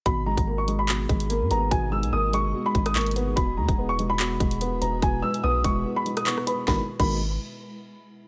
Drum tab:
CC |--------------------------------|--------------------------------|--------------------------------|--------------------------------|
HH |x-----x-----x-------x-x-x---x---|x-----x-----x-------x-x-xxxxx---|x-----x-----x-------x-x-x---x---|x-----x-----x-------x-x-x---x---|
CP |----------------x---------------|------------------------x-------|----------------x---------------|------------------------x-------|
SD |--------------------------------|----------------------r---------|--------------------------------|----------------------r---r-----|
BD |o-----o-------------o-----------|o-------------------o-----------|o-----o-------------o-----------|o-----------o-------------------|

CC |------x-------------------------|
HH |--------------------------------|
CP |--------------------------------|
SD |o-------------------------------|
BD |o-----o-------------------------|